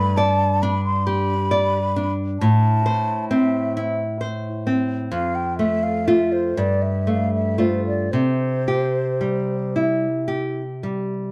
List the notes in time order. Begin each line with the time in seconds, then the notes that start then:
Already playing: G2 B5
0.17 D5 A5
0.62 D4 B5
0.85 C6
1.06 G4 B5
1.51 D5
1.96 D4
2.40 A2 A5
2.86 C5
3.30 C4 E5
3.77 E4
4.21 C5
4.67 C4
5.11 F2 F5
5.35 G5
5.59 A3 E5
5.83 F5
6.06 A3 F4 E5
6.32 C5
6.57 G2 D5
6.82 E5
7.07 A3 F5
7.34 E5
7.58 A3 F4 C5
7.87 D5
8.12 C3 C5
8.68 G4
9.21 G3
9.76 E4
10.28 G4
10.83 G3